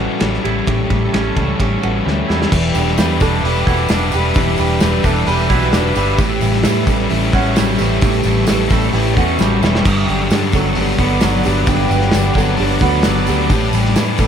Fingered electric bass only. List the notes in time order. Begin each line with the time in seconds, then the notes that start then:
0.21 A1
0.45 A1
0.68 A1
0.91 A1
1.14 A1
1.36 C#2
1.60 A1
1.84 A1
2.06 D2
2.30 E2
2.52 E1
2.76 E1
2.98 E2
3.21 E1
3.44 E1
3.67 E1
3.91 E1
4.14 E1
4.36 E1
4.60 E1
4.82 E1
5.04 E1
5.28 E1
5.50 B1
5.73 E1
5.96 G1
6.19 A1
6.43 A1
6.65 A2
6.87 A1
7.12 A1
7.33 A1
7.58 A1
7.80 A1
8.03 A1
8.25 A1
8.49 A1
8.71 A1
8.93 A1
9.17 E2
9.39 A1
9.62 E1
9.85 G1
10.09 G1
10.31 G2
10.54 G1
10.78 G1
10.99 G1
11.22 G1
11.46 G1
11.68 G1
11.91 G1
12.14 G1
12.35 G1
12.60 G1
12.81 D2
13.06 G1
13.29 D2
13.50 A1
13.73 A1
13.96 A2
14.19 A1